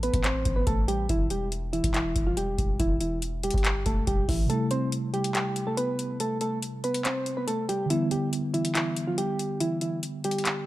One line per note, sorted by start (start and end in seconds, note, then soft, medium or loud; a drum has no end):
0.00 0.11 A1 loud
0.00 0.21 B3 medium
0.00 0.21 B4 medium
0.00 closed hi-hat soft
0.14 0.44 A1 loud
0.14 kick loud
0.14 closed hi-hat medium
0.24 0.55 C4 medium
0.24 0.54 C5 medium
0.24 clap loud
0.24 closed hi-hat medium
0.45 0.66 A1 loud
0.45 kick loud
0.45 closed hi-hat medium
0.56 0.65 B3 medium
0.56 0.65 B4 medium
0.67 1.08 A1 loud
0.67 0.85 A3 medium
0.67 0.84 A4 medium
0.67 kick loud
0.67 closed hi-hat medium
0.88 1.06 G3 medium
0.88 1.06 G4 medium
0.88 closed hi-hat medium
1.09 1.81 E1 loud
1.09 1.28 E3 medium
1.09 1.27 E4 loud
1.09 kick loud
1.09 closed hi-hat medium
1.30 1.49 G3 medium
1.30 1.48 G4 medium
1.30 closed hi-hat medium
1.52 closed hi-hat medium
1.73 1.91 E3 medium
1.73 1.91 E4 medium
1.73 closed hi-hat soft
1.84 2.14 E1 loud
1.84 kick loud
1.84 closed hi-hat medium
1.94 2.25 E3 medium
1.94 2.24 E4 medium
1.94 clap loud
1.94 closed hi-hat medium
2.16 2.57 E1 loud
2.16 kick medium
2.16 closed hi-hat medium
2.27 2.36 F3 medium
2.27 2.35 F4 medium
2.37 2.77 G3 medium
2.37 2.77 G4 medium
2.37 closed hi-hat medium
2.58 2.79 E1 loud
2.58 kick medium
2.58 closed hi-hat medium
2.80 3.51 E1 loud
2.80 2.98 E3 medium
2.80 2.97 E4 medium
2.80 kick loud
2.80 closed hi-hat medium
3.01 3.19 E3 medium
3.01 3.18 E4 medium
3.01 closed hi-hat medium
3.22 closed hi-hat medium
3.43 3.84 G3 medium
3.43 3.84 G4 medium
3.43 closed hi-hat medium
3.51 3.85 G1 loud
3.51 kick loud
3.51 closed hi-hat medium
3.58 closed hi-hat soft
3.65 clap loud
3.65 closed hi-hat medium
3.86 4.06 E1 loud
3.86 4.04 A3 medium
3.86 4.04 A4 medium
3.86 kick loud
3.86 closed hi-hat medium
4.07 4.28 E1 loud
4.07 4.25 G3 medium
4.07 4.25 G4 medium
4.07 kick loud
4.07 closed hi-hat medium
4.29 4.50 A1 loud
4.29 4.47 E3 medium
4.29 4.46 E4 medium
4.29 kick medium
4.29 open hi-hat medium
4.46 7.85 C3 medium
4.46 7.86 G3 medium
4.46 4.68 A3 medium
4.46 4.67 A4 medium
4.46 closed hi-hat medium
4.51 7.87 A3 medium
4.51 7.88 E4 medium
4.71 4.89 C4 medium
4.71 4.89 C5 medium
4.71 closed hi-hat medium
4.92 closed hi-hat medium
5.14 5.32 G3 medium
5.14 5.31 G4 medium
5.14 closed hi-hat soft
5.24 closed hi-hat medium
5.35 5.65 G3 medium
5.35 5.65 G4 medium
5.35 clap loud
5.35 closed hi-hat medium
5.56 closed hi-hat medium
5.67 5.76 A3 medium
5.67 5.76 A4 medium
5.77 6.18 B3 medium
5.77 6.17 B4 medium
5.77 closed hi-hat medium
5.99 closed hi-hat medium
6.20 6.38 A3 medium
6.20 6.38 A4 medium
6.20 closed hi-hat medium
6.41 6.59 A3 medium
6.41 6.59 A4 medium
6.41 closed hi-hat medium
6.62 closed hi-hat medium
6.84 7.02 B3 medium
6.84 7.01 B4 medium
6.84 closed hi-hat soft
6.94 closed hi-hat medium
7.05 7.36 C4 medium
7.05 7.35 C5 medium
7.05 clap loud
7.05 closed hi-hat medium
7.26 closed hi-hat medium
7.37 7.46 B3 medium
7.37 7.46 B4 medium
7.47 7.66 A3 medium
7.47 7.65 A4 medium
7.47 closed hi-hat medium
7.69 7.87 G3 medium
7.69 7.86 G4 medium
7.69 closed hi-hat medium
7.86 10.66 D3 medium
7.86 10.66 G3 medium
7.90 8.08 E3 medium
7.90 10.66 B3 medium
7.90 8.08 E4 loud
7.90 10.66 E4 medium
7.90 closed hi-hat medium
8.11 8.29 G3 medium
8.11 8.29 G4 medium
8.11 closed hi-hat medium
8.33 closed hi-hat medium
8.54 8.72 E3 medium
8.54 8.71 E4 medium
8.54 closed hi-hat soft
8.65 closed hi-hat medium
8.75 9.06 E3 medium
8.75 9.05 E4 medium
8.75 clap loud
8.75 closed hi-hat medium
8.96 closed hi-hat medium
9.07 9.17 F3 medium
9.07 9.16 F4 medium
9.18 9.58 G3 medium
9.18 9.58 G4 medium
9.18 closed hi-hat medium
9.39 closed hi-hat medium
9.60 9.78 E3 medium
9.60 9.78 E4 medium
9.60 closed hi-hat medium
9.81 10.00 E3 medium
9.81 9.99 E4 medium
9.81 closed hi-hat medium
10.03 closed hi-hat medium
10.24 10.65 G3 medium
10.24 10.64 G4 medium
10.24 closed hi-hat medium
10.31 closed hi-hat medium
10.38 closed hi-hat soft
10.45 clap loud
10.45 closed hi-hat medium